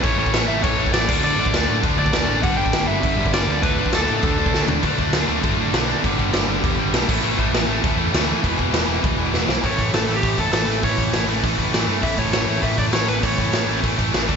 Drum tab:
CC |x---x---x---x-x-|x---x---x---x---|x---x---x---x---|x---x---x-------|
HH |----------------|----------------|----------------|----------------|
SD |----o-------o---|----o-------o---|----o-------o---|----o-------o---|
FT |----------------|----------------|----------------|--------------o-|
BD |o--o----o--o--o-|---o----o--o----|o--o----o--o----|o--o----o--o----|

CC |x---x---x---x---|x---x---x---x-x-|x---x---x---x---|x---x---x-------|
HH |----------------|----------------|----------------|----------------|
SD |----o-------o---|----o-------o---|----o-------o---|----o-------o-o-|
FT |----------------|----------------|----------------|----------------|
BD |o-o-----o-------|o-o-----o-----o-|--o-----o-------|o-o-----o-------|

CC |----------------|----------------|----------------|----------------|
HH |o-o-o-o-o-o-o-o-|o-o-o-o-o-o-o-o-|o-o-o-o-o-o-o-o-|o-o-o-o-o-o-o-o-|
SD |----o-------o---|----o-------o---|----o-------o---|----o-------o---|
FT |----------------|----------------|----------------|----------------|
BD |o-o-----o-o-----|o-o-----o-o-----|o-o-----o-o-----|o-o-----o-o---o-|